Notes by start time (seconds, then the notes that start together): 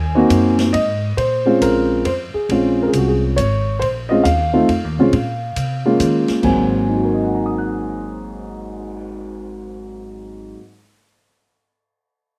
Already playing: D#2 G#5
0.15 A#3 C4 D#4 F#4
0.30 F#2, kick, hi-hat pedal, ride
0.59 snare, ride
0.73 G#2 D#5, kick, ride
1.17 A#2 C5, kick, ride
1.45 G#3 C4 C#4 F4
1.61 A#1 A#4, kick, hi-hat pedal, ride
2.05 F2 C5, kick, ride
2.34 G#4, muted upright bass stroke
2.49 A#1 G#3 C4 C#4 F4, kick, ride
2.83 A#4
2.88 G#4
2.93 C2 F#4, kick, hi-hat pedal, ride
3.08 G#4
3.36 G#1 C#5, kick, hi-hat pedal, ride
3.79 A#1 C5, kick, ride
4.09 G#3 C4 C#4 F4 D#5
4.24 D#2 F5, kick, hi-hat pedal, ride
4.53 A3 C4 D#4 F4
4.69 F2, kick, ride
4.84 D#2
4.98 C2 G#3 C4 C#4 F4
5.13 A#2, kick, ride
5.56 C3, kick, hi-hat pedal, ride
5.85 G#3 A#3 C#4 F4
6.00 D#3, kick, hi-hat pedal, ride
6.28 muted upright bass stroke, snare, ride
6.42 G#1 G#2 F#3 A#3 C4 G#5, kick, crash
6.72 cymbal swell
6.89 D#4
6.97 F#4
7.05 A#4
7.14 D#5
7.24 F#5
7.35 A#5
7.46 D#6
7.58 F#6